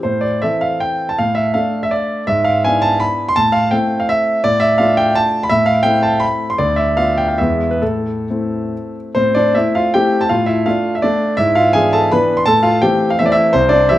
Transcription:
0.03 0.41 A2 soft
0.03 0.22 C5 medium
0.21 0.41 D5 medium
0.42 1.13 E3 soft
0.42 1.13 C4 soft
0.42 1.13 A4 soft
0.42 0.62 E5 medium
0.61 0.81 F5 medium
0.80 1.08 G5 medium
1.09 1.17 A5 medium
1.18 1.53 A2 medium
1.18 1.35 F5 medium
1.35 1.53 E5 medium
1.54 2.23 A3 soft
1.54 2.23 D4 soft
1.54 2.23 A4 soft
1.54 1.82 F5 medium
1.83 1.91 E5 medium
1.91 2.26 D5 medium
2.27 2.63 G#2 medium
2.27 2.45 E5 medium
2.44 2.63 F5 medium
2.64 3.33 B3 soft
2.64 3.33 D4 soft
2.64 3.33 E4 soft
2.64 2.83 G#5 medium
2.82 3.01 A5 medium
3.00 3.27 B5 medium
3.29 3.36 C6 loud
3.36 3.72 A2 medium
3.36 3.53 A5 loud
3.52 3.72 F5 medium
3.71 4.39 A3 soft
3.71 4.39 C4 soft
3.71 4.40 E4 soft
3.71 4.00 G5 medium
4.00 4.09 F5 medium
4.09 4.43 E5 medium
4.44 4.78 A2 medium
4.44 4.61 D5 medium
4.60 4.79 E5 medium
4.78 5.46 A3 soft
4.78 5.47 D4 soft
4.78 5.47 F4 soft
4.78 4.97 F5 medium
4.97 5.15 G5 medium
5.15 5.42 A5 loud
5.43 5.51 B5 medium
5.49 5.85 A2 medium
5.49 5.67 E5 loud
5.66 5.85 F5 medium
5.83 6.54 A3 soft
5.83 6.54 C4 soft
5.83 6.54 E4 soft
5.83 6.03 G5 loud
6.03 6.22 A5 medium
6.20 6.48 B5 medium
6.50 6.59 C6 medium
6.58 6.96 D2 medium
6.58 6.77 D5 medium
6.76 6.97 E5 medium
6.97 7.34 B3 soft
6.97 7.34 F4 soft
6.97 7.17 F5 medium
7.18 7.28 G5 medium
7.28 7.38 F5 medium
7.38 7.81 E2 soft
7.38 7.78 G#3 soft
7.38 7.78 B3 soft
7.38 7.78 E4 soft
7.38 7.70 E5 medium
7.71 7.81 B4 medium
7.82 8.27 A2 soft
7.82 8.94 A4 medium
8.30 9.12 A3 soft
8.30 9.12 C4 soft
8.30 9.12 E4 soft
9.15 9.54 A2 soft
9.15 9.33 C4 medium
9.15 9.34 C5 medium
9.35 9.54 D4 medium
9.35 9.54 D5 medium
9.55 9.90 A3 soft
9.55 9.90 C4 soft
9.55 9.74 E4 medium
9.55 9.74 E5 medium
9.75 9.93 F4 medium
9.75 9.93 F5 medium
9.94 10.27 A3 soft
9.94 10.27 C4 soft
9.94 10.27 E4 soft
9.94 10.19 G4 medium
9.94 10.21 G5 medium
10.21 10.29 A5 medium
10.29 10.65 A2 medium
10.29 10.46 F4 medium
10.29 10.47 F5 medium
10.46 10.64 E4 medium
10.46 10.65 E5 medium
10.66 11.00 A3 soft
10.66 11.01 D4 soft
10.66 10.93 F4 medium
10.66 10.95 F5 medium
10.95 11.04 E5 medium
11.02 11.34 A3 soft
11.02 11.36 D4 medium
11.02 11.37 D5 medium
11.37 11.72 G#2 medium
11.37 11.54 E4 medium
11.37 11.54 E5 medium
11.55 11.73 F4 medium
11.55 11.73 F5 medium
11.73 12.07 E3 soft
11.73 12.08 B3 soft
11.73 12.08 D4 soft
11.73 11.92 G#4 medium
11.73 11.92 G#5 medium
11.93 12.10 A4 medium
11.93 12.11 A5 medium
12.12 12.43 E3 medium
12.12 12.44 B3 medium
12.12 12.44 D4 medium
12.12 12.36 B4 medium
12.12 12.38 B5 medium
12.37 12.46 C6 medium
12.46 12.81 A2 medium
12.46 12.63 A4 medium
12.46 12.63 A5 loud
12.63 12.81 F4 medium
12.63 12.81 F5 medium
12.82 13.15 E3 soft
12.82 13.15 A3 soft
12.82 13.15 C4 medium
12.82 13.08 G4 medium
12.82 13.10 G5 medium
13.10 13.19 F5 medium
13.19 13.51 E3 medium
13.19 13.51 A3 medium
13.19 13.51 C4 medium
13.19 13.25 E5 medium
13.26 13.32 D5 medium
13.32 13.53 E4 medium
13.32 13.54 E5 medium
13.53 13.88 C2 medium
13.53 13.70 C4 medium
13.53 13.71 C5 loud
13.69 13.87 D4 medium
13.69 13.88 D5 medium
13.89 13.98 E3 soft
13.89 13.98 G3 soft
13.89 13.98 C4 soft
13.89 13.98 E4 medium
13.89 13.98 E5 medium

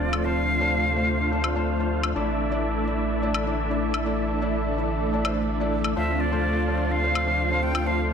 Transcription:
0.00 2.13 D2 medium
0.00 2.12 C3 medium
0.00 2.12 F3 medium
0.00 2.12 A3 medium
0.00 8.13 A3 medium
0.00 2.12 D4 medium
0.00 2.12 F4 medium
0.00 0.10 C5 medium
0.00 2.12 C5 medium
0.00 0.26 D5 loud
0.00 2.12 F5 medium
0.00 impact medium
0.13 high woodblock medium
0.24 0.57 A3 medium
0.24 0.58 D4 medium
0.24 0.58 F4 medium
0.24 0.58 C5 medium
0.24 1.91 F5 loud
0.60 0.93 A3 medium
0.60 0.93 D4 medium
0.60 0.94 F4 medium
0.60 0.94 C5 medium
0.96 1.29 A3 medium
0.96 1.29 D4 medium
0.96 1.29 F4 medium
0.96 1.29 C5 medium
1.31 1.52 A3 medium
1.31 1.52 D4 medium
1.31 1.52 F4 medium
1.31 1.53 C5 medium
1.44 high woodblock medium
1.55 1.76 A3 medium
1.55 1.76 D4 medium
1.55 1.76 F4 medium
1.55 1.76 C5 medium
1.79 2.00 A3 medium
1.79 2.00 D4 medium
1.79 2.00 F4 medium
1.79 2.01 C5 medium
2.03 high woodblock medium
2.15 5.94 A1 medium
2.15 5.92 D3 medium
2.15 5.92 E3 medium
2.15 2.48 A3 medium
2.15 5.93 A3 medium
2.15 2.48 D4 medium
2.15 5.93 D4 medium
2.15 5.92 E4 medium
2.15 5.93 E4 medium
2.15 2.48 E4 medium
2.15 5.92 A4 medium
2.15 5.93 D5 medium
2.15 2.48 D5 medium
2.15 5.93 E5 medium
2.50 2.84 A3 medium
2.50 2.84 D4 medium
2.50 2.84 E4 medium
2.50 2.84 D5 medium
2.86 3.19 A3 medium
2.86 3.20 D4 medium
2.86 3.20 E4 medium
2.86 3.20 D5 medium
3.22 3.42 A3 medium
3.22 3.43 D4 medium
3.22 3.43 E4 medium
3.22 3.43 D5 medium
3.34 high woodblock medium
3.46 3.66 A3 medium
3.46 3.66 D4 medium
3.46 3.67 E4 medium
3.46 3.67 D5 medium
3.70 3.90 A3 medium
3.70 3.91 D4 medium
3.70 3.91 E4 medium
3.70 3.91 D5 medium
3.94 high woodblock medium
4.05 4.38 A3 medium
4.05 4.39 D4 medium
4.05 4.39 E4 medium
4.05 4.39 D5 medium
4.41 4.74 A3 medium
4.41 4.74 D4 medium
4.41 4.74 E4 medium
4.41 4.75 D5 medium
4.77 5.10 A3 medium
4.77 5.10 D4 medium
4.77 5.10 E4 medium
4.77 5.10 D5 medium
5.12 5.22 A3 medium
5.12 5.22 D4 medium
5.12 5.23 E4 medium
5.12 5.23 D5 medium
5.24 5.37 A3 medium
5.24 5.38 D4 medium
5.24 5.38 E4 medium
5.24 5.38 C5 medium
5.24 high woodblock medium
5.60 5.73 A3 medium
5.60 5.73 D4 medium
5.60 5.74 E4 medium
5.60 5.74 D5 medium
5.84 high woodblock medium
5.96 8.13 D2 medium
5.96 8.13 C3 medium
5.96 8.13 F3 medium
5.96 6.29 A3 medium
5.96 8.13 A3 medium
5.96 6.29 D4 medium
5.96 7.85 D4 medium
5.96 8.13 D4 medium
5.96 8.13 F4 medium
5.96 6.29 F4 medium
5.96 8.13 C5 medium
5.96 6.29 C5 medium
5.96 6.22 E5 medium
5.96 8.13 F5 medium
6.20 6.93 D5 medium
6.31 6.65 A3 medium
6.31 6.65 D4 medium
6.31 6.65 F4 medium
6.31 6.65 C5 medium
6.67 7.00 A3 medium
6.67 7.00 D4 medium
6.67 7.01 F4 medium
6.67 7.01 C5 medium
6.92 7.64 F5 loud
7.03 7.23 A3 medium
7.03 7.24 D4 medium
7.03 7.24 F4 medium
7.03 7.24 C5 medium
7.15 high woodblock medium
7.27 7.47 A3 medium
7.27 7.47 D4 medium
7.27 7.48 F4 medium
7.27 7.48 C5 medium
7.50 7.71 A3 medium
7.50 7.72 D4 medium
7.50 7.72 F4 medium
7.50 7.72 C5 medium
7.63 7.88 G5 loud
7.75 high woodblock medium
7.86 8.13 A3 medium
7.86 8.13 C4 medium
7.86 8.13 D4 medium
7.86 8.13 F4 medium
7.86 8.13 C5 medium
7.86 8.10 F5 loud

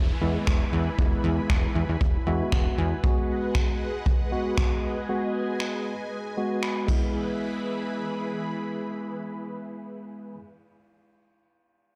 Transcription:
0.00 0.13 E1 loud
0.00 3.00 E3 medium
0.00 3.00 E4 medium
0.00 6.84 B4 medium
0.00 3.00 G#5 medium
0.00 3.00 B5 medium
0.00 downlifter medium
0.21 0.38 E2 medium
0.21 0.85 G#3 medium
0.21 0.85 B3 medium
0.21 0.85 E4 medium
0.47 0.64 E1 loud
0.47 finger snap loud
0.47 kick loud
0.73 0.90 E2 medium
0.98 1.15 E1 loud
0.98 1.82 G#3 medium
0.98 1.82 B3 medium
0.98 1.82 E4 loud
0.98 kick loud
1.24 1.41 E2 loud
1.50 1.67 E1 loud
1.50 finger snap loud
1.50 kick loud
1.75 1.84 E2 loud
1.89 1.97 E2 medium
2.01 2.18 E1 loud
2.01 kick loud
2.27 2.44 E2 loud
2.27 2.90 G#3 medium
2.27 2.90 B3 medium
2.27 2.90 F#4 medium
2.27 2.51 E5 medium
2.52 2.69 E1 loud
2.52 2.76 F#5 medium
2.52 finger snap loud
2.52 kick loud
2.78 2.95 E2 loud
2.78 3.02 G#5 medium
3.04 3.87 G#3 medium
3.04 6.85 G#3 medium
3.04 3.88 B3 medium
3.04 3.88 F#4 loud
3.04 6.85 G#4 medium
3.04 6.85 D#5 medium
3.04 5.07 F#5 medium
3.04 kick loud
3.55 finger snap loud
3.55 kick loud
4.06 kick loud
4.32 4.95 G#3 medium
4.32 4.95 B3 medium
4.32 4.95 F#4 medium
4.58 finger snap loud
4.58 kick loud
5.09 5.93 G#3 medium
5.09 5.93 B3 medium
5.09 5.93 F#4 medium
5.09 6.87 G#5 medium
5.60 finger snap loud
6.37 6.85 G#3 medium
6.37 6.87 B3 medium
6.37 6.89 F#4 medium
6.63 6.87 B5 medium
6.63 finger snap loud
6.86 10.36 E3 medium
6.86 10.34 G#3 medium
6.86 10.36 B3 medium
6.86 10.36 E4 medium
6.86 10.36 G#4 medium
6.86 10.36 B4 medium
6.86 10.36 B5 medium
6.86 kick loud
6.86 ride medium
6.91 10.38 E4 medium

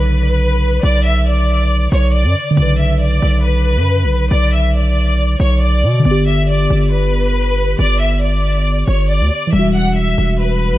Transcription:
0.00 0.79 B1 loud
0.00 2.53 C#3 medium
0.00 2.50 D3 medium
0.00 0.79 B4 medium
0.00 2.56 B4 medium
0.83 1.88 B1 loud
0.83 1.02 D5 loud
1.05 1.24 E5 medium
1.27 1.88 D5 medium
1.92 2.26 B1 loud
1.92 2.11 C#5 medium
2.14 2.55 D5 medium
2.25 2.35 F#2 loud
2.51 5.98 D3 medium
2.57 3.20 B1 loud
2.57 6.01 C#3 medium
2.57 2.76 D5 loud
2.62 6.04 B4 medium
2.79 2.98 E5 medium
3.00 3.41 D5 medium
3.22 3.78 B1 loud
3.44 4.27 B4 medium
3.77 4.05 F#2 loud
4.04 4.30 B1 loud
4.31 5.36 B1 loud
4.31 4.50 D5 loud
4.53 4.72 E5 medium
4.75 5.36 D5 medium
5.40 5.85 B1 loud
5.40 5.59 C#5 medium
5.61 6.02 D5 medium
5.83 6.04 B2 loud
5.99 9.46 D3 medium
6.04 6.68 G1 loud
6.04 9.49 B3 medium
6.04 6.23 D5 loud
6.11 9.52 G4 medium
6.27 6.46 E5 medium
6.49 6.89 D5 medium
6.70 7.75 G1 loud
6.92 7.75 B4 medium
7.79 8.84 G1 loud
7.79 7.98 D5 loud
8.01 8.19 E5 medium
8.22 8.84 D5 medium
8.87 9.22 G1 loud
8.87 9.06 C#5 medium
9.09 9.50 D5 medium
9.20 9.31 D2 loud
9.47 10.78 E3 medium
9.53 10.15 E1 loud
9.53 10.78 G3 medium
9.53 9.71 E5 loud
9.59 10.78 F#4 medium
9.75 9.93 F#5 medium
9.96 10.37 E5 medium
10.18 10.74 E1 loud
10.40 10.78 B4 medium
10.72 10.78 B1 loud

